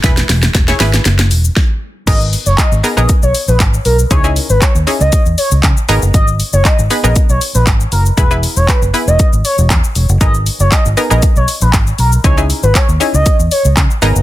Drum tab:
CC |----------------|x---------------|----------------|----------------|
HH |x-o-x-o-x-o-----|x-o-x-o-x-o-x-o-|x-o-x-o-x-o-x-o-|x-o-x-o-x-o-x-o-|
SH |xxxxxxxxxxxx----|xxxxxxxxxxxxxxxx|xxxxxxxxxxxxxxxx|xxxxxxxxxxxxxxxx|
CP |----------------|----x-------x---|----x-------x---|----x-------x---|
SD |oooooooooo--o---|----------------|----------------|----------------|
BD |o---o-------o---|o---o---o---o---|o---o---o---o---|o---o---o---o---|

CC |----------------|----------------|----------------|
HH |x-o-x-o-x-o-x-o-|x-o-x-o-x-o-x-o-|x-o-x-o-x-o-x-o-|
SH |xxxxxxxxxxxxxxxx|xxxxxxxxxxxxxxxx|xxxxxxxxxxxxxxxx|
CP |----x-------x---|----x-------x---|----x-------x---|
SD |----------------|----------------|----------------|
BD |o---o---o---o---|o---o---o---o---|o---o---o---o---|